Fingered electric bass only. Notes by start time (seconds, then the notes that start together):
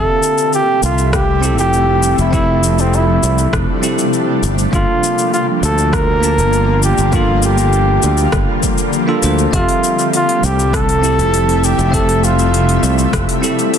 0.83 C2
1.59 F1
2.19 F1
3.23 C2
3.53 F1
4.43 G1
4.73 G1
5.63 D2
6.38 G1
6.98 G1
8.03 D2
8.33 G1
9.24 D2
9.53 F1
10.43 C2
11.19 F1
11.79 F1
12.83 C2
13.13 F1